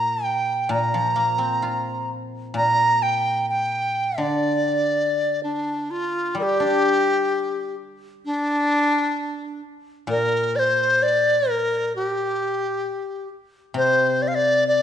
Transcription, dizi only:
Already playing: A#5
0.24 G5
0.71 A#5
2.57 A#5
3.03 G5
3.49 G5
4.20 D5
5.43 D4
5.91 F4
6.39 G4 A#4
8.25 D4
10.10 A#4
10.56 C5 D5
11.03 D5
11.50 A#4
11.96 G4
13.77 C5
14.22 D5
14.28 F5
14.35 D5
14.68 D5

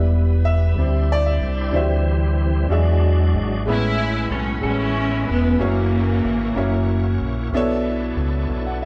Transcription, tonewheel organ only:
Already playing: G3 B3 E4 B4
0.77 G3 D4 E4 C5
1.74 E3 G3 C4
2.71 F#3 G#3 D4
3.68 B3 C#4 E4 A4
3.76 B4
5.60 A#3 C#4 E4 F#4 C#5
7.54 B3 C#4 E4 A4 C#5
7.62 D4

